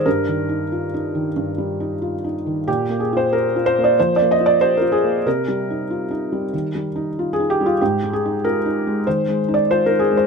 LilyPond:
\new Staff \with { instrumentName = "Felt piano" } { \time 4/4 \key ees \major \tempo 4 = 94 << { bes'2.~ bes'8 r8 | g'8 aes'16 c''16 bes'8 c''16 d''16 c''16 d''16 ees''16 d''16 c''16 bes'16 aes'8 | bes'2.~ bes'16 aes'16 g'16 f'16 | g'8 aes'8 bes'4 c''8. d''16 c''16 bes'16 aes'16 c''16 | } \\ { \tuplet 3/2 { g,8 ees8 ees'8 f'8 ees'8 ees8 g,8 g8 ees'8 f'8 ees'8 ees8 } | \tuplet 3/2 { bes,8 bes8 f'8 g'8 f'8 bes8 f8 bes8 f'8 g'8 f'8 bes8 } | \tuplet 3/2 { c8 g8 ees'8 f'8 ees'8 g8 ees8 g8 ees'8 f'8 ees'8 g8 } | \tuplet 3/2 { aes,8 aes8 ees'8 f'8 ees'8 aes8 ees8 aes8 ees'8 f'8 ees'8 aes8 } | } >> }